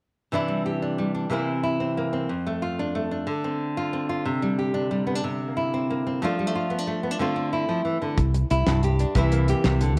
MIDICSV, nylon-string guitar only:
0, 0, Header, 1, 3, 480
1, 0, Start_track
1, 0, Key_signature, 0, "major"
1, 0, Tempo, 327154
1, 477, Time_signature, 12, 3, 24, 8
1, 14660, End_track
2, 0, Start_track
2, 0, Title_t, "Nylon-string guitar"
2, 0, Program_c, 0, 24
2, 470, Note_on_c, 0, 48, 64
2, 485, Note_on_c, 0, 52, 52
2, 503, Note_on_c, 0, 62, 53
2, 514, Note_on_c, 0, 64, 60
2, 707, Note_on_c, 0, 55, 45
2, 957, Note_off_c, 0, 64, 0
2, 963, Note_on_c, 0, 67, 51
2, 1190, Note_off_c, 0, 62, 0
2, 1208, Note_on_c, 0, 62, 52
2, 1425, Note_off_c, 0, 55, 0
2, 1443, Note_on_c, 0, 55, 51
2, 1663, Note_off_c, 0, 62, 0
2, 1680, Note_on_c, 0, 62, 48
2, 1885, Note_off_c, 0, 48, 0
2, 1890, Note_off_c, 0, 62, 0
2, 1891, Note_off_c, 0, 67, 0
2, 1893, Note_off_c, 0, 52, 0
2, 1901, Note_on_c, 0, 48, 62
2, 1914, Note_on_c, 0, 52, 53
2, 1919, Note_off_c, 0, 55, 0
2, 1925, Note_on_c, 0, 58, 52
2, 1938, Note_on_c, 0, 60, 55
2, 1949, Note_on_c, 0, 64, 60
2, 2161, Note_off_c, 0, 58, 0
2, 2380, Note_off_c, 0, 64, 0
2, 2398, Note_on_c, 0, 64, 53
2, 2637, Note_off_c, 0, 60, 0
2, 2643, Note_on_c, 0, 60, 49
2, 2896, Note_on_c, 0, 58, 49
2, 3117, Note_off_c, 0, 60, 0
2, 3123, Note_on_c, 0, 60, 51
2, 3321, Note_off_c, 0, 48, 0
2, 3327, Note_off_c, 0, 52, 0
2, 3338, Note_off_c, 0, 58, 0
2, 3358, Note_off_c, 0, 64, 0
2, 3364, Note_on_c, 0, 41, 62
2, 3617, Note_on_c, 0, 57, 49
2, 3846, Note_on_c, 0, 65, 50
2, 4091, Note_off_c, 0, 60, 0
2, 4097, Note_on_c, 0, 62, 56
2, 4312, Note_off_c, 0, 57, 0
2, 4330, Note_on_c, 0, 57, 53
2, 4550, Note_off_c, 0, 62, 0
2, 4568, Note_on_c, 0, 62, 44
2, 4772, Note_off_c, 0, 41, 0
2, 4773, Note_off_c, 0, 65, 0
2, 4774, Note_off_c, 0, 62, 0
2, 4775, Note_off_c, 0, 57, 0
2, 4793, Note_on_c, 0, 50, 72
2, 5050, Note_on_c, 0, 60, 53
2, 5534, Note_on_c, 0, 65, 57
2, 5760, Note_off_c, 0, 60, 0
2, 5766, Note_on_c, 0, 60, 49
2, 5987, Note_off_c, 0, 65, 0
2, 6005, Note_on_c, 0, 65, 55
2, 6213, Note_off_c, 0, 65, 0
2, 6242, Note_on_c, 0, 48, 73
2, 6489, Note_on_c, 0, 55, 52
2, 6728, Note_on_c, 0, 67, 54
2, 6949, Note_off_c, 0, 60, 0
2, 6955, Note_on_c, 0, 62, 61
2, 7184, Note_off_c, 0, 55, 0
2, 7202, Note_on_c, 0, 55, 53
2, 7427, Note_off_c, 0, 62, 0
2, 7433, Note_on_c, 0, 59, 49
2, 7560, Note_off_c, 0, 59, 0
2, 7560, Note_on_c, 0, 62, 44
2, 7652, Note_off_c, 0, 48, 0
2, 7655, Note_off_c, 0, 67, 0
2, 7679, Note_off_c, 0, 62, 0
2, 7685, Note_on_c, 0, 48, 69
2, 7921, Note_off_c, 0, 55, 0
2, 8037, Note_on_c, 0, 58, 44
2, 8168, Note_on_c, 0, 64, 55
2, 8418, Note_on_c, 0, 60, 50
2, 8638, Note_off_c, 0, 58, 0
2, 8662, Note_on_c, 0, 58, 51
2, 8894, Note_off_c, 0, 60, 0
2, 8899, Note_on_c, 0, 60, 52
2, 9094, Note_off_c, 0, 48, 0
2, 9102, Note_off_c, 0, 58, 0
2, 9117, Note_off_c, 0, 50, 0
2, 9124, Note_off_c, 0, 64, 0
2, 9132, Note_on_c, 0, 53, 58
2, 9145, Note_on_c, 0, 57, 59
2, 9153, Note_off_c, 0, 60, 0
2, 9159, Note_on_c, 0, 62, 58
2, 9166, Note_on_c, 0, 65, 61
2, 9369, Note_off_c, 0, 57, 0
2, 9375, Note_on_c, 0, 55, 51
2, 9490, Note_off_c, 0, 55, 0
2, 9490, Note_on_c, 0, 57, 46
2, 9597, Note_off_c, 0, 65, 0
2, 9615, Note_on_c, 0, 65, 54
2, 9825, Note_off_c, 0, 62, 0
2, 9831, Note_on_c, 0, 59, 60
2, 9954, Note_off_c, 0, 59, 0
2, 9954, Note_on_c, 0, 62, 47
2, 10065, Note_off_c, 0, 57, 0
2, 10083, Note_on_c, 0, 57, 54
2, 10312, Note_off_c, 0, 62, 0
2, 10317, Note_on_c, 0, 59, 53
2, 10430, Note_off_c, 0, 59, 0
2, 10430, Note_on_c, 0, 62, 40
2, 10532, Note_off_c, 0, 57, 0
2, 10537, Note_off_c, 0, 53, 0
2, 10538, Note_off_c, 0, 65, 0
2, 10553, Note_on_c, 0, 50, 66
2, 10555, Note_off_c, 0, 62, 0
2, 10566, Note_on_c, 0, 57, 54
2, 10573, Note_on_c, 0, 60, 59
2, 10588, Note_on_c, 0, 65, 66
2, 10780, Note_off_c, 0, 60, 0
2, 10797, Note_on_c, 0, 60, 54
2, 11038, Note_off_c, 0, 65, 0
2, 11044, Note_on_c, 0, 64, 59
2, 11272, Note_off_c, 0, 50, 0
2, 11278, Note_on_c, 0, 53, 62
2, 11509, Note_off_c, 0, 53, 0
2, 11515, Note_on_c, 0, 52, 53
2, 11756, Note_off_c, 0, 52, 0
2, 11762, Note_on_c, 0, 50, 56
2, 11969, Note_off_c, 0, 60, 0
2, 11971, Note_off_c, 0, 57, 0
2, 12001, Note_off_c, 0, 50, 0
2, 12465, Note_off_c, 0, 64, 0
2, 12483, Note_on_c, 0, 64, 56
2, 12713, Note_on_c, 0, 43, 64
2, 12961, Note_off_c, 0, 64, 0
2, 12971, Note_on_c, 0, 67, 56
2, 13209, Note_on_c, 0, 62, 45
2, 13407, Note_off_c, 0, 43, 0
2, 13415, Note_off_c, 0, 62, 0
2, 13415, Note_off_c, 0, 67, 0
2, 13430, Note_on_c, 0, 48, 65
2, 13443, Note_on_c, 0, 52, 60
2, 13473, Note_on_c, 0, 64, 64
2, 13676, Note_on_c, 0, 58, 53
2, 13925, Note_off_c, 0, 64, 0
2, 13931, Note_on_c, 0, 67, 59
2, 14139, Note_off_c, 0, 48, 0
2, 14156, Note_on_c, 0, 48, 52
2, 14387, Note_off_c, 0, 52, 0
2, 14393, Note_on_c, 0, 50, 55
2, 14397, Note_off_c, 0, 48, 0
2, 14625, Note_off_c, 0, 50, 0
2, 14660, Note_off_c, 0, 58, 0
2, 14660, Note_off_c, 0, 67, 0
2, 14660, End_track
3, 0, Start_track
3, 0, Title_t, "Muted nylon-string guitar strokes"
3, 494, Note_on_c, 9, 29, 53
3, 641, Note_off_c, 9, 29, 0
3, 9124, Note_on_c, 9, 29, 68
3, 9271, Note_off_c, 9, 29, 0
3, 11994, Note_on_c, 9, 29, 72
3, 12141, Note_off_c, 9, 29, 0
3, 12242, Note_on_c, 9, 29, 47
3, 12388, Note_off_c, 9, 29, 0
3, 13453, Note_on_c, 9, 29, 53
3, 13600, Note_off_c, 9, 29, 0
3, 14660, End_track
0, 0, End_of_file